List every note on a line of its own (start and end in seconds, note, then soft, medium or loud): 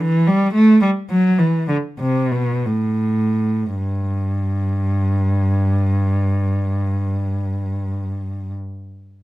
0.02 0.27 E3 medium
0.27 0.54 G3 medium
0.55 0.81 A3 medium
0.82 0.90 G3 medium
1.10 1.39 F#3 medium
1.39 1.69 E3 medium
1.69 1.77 D3 medium
2.00 2.31 C3 medium
2.32 2.65 B2 medium
2.66 3.76 A2 medium
3.76 8.54 G2 medium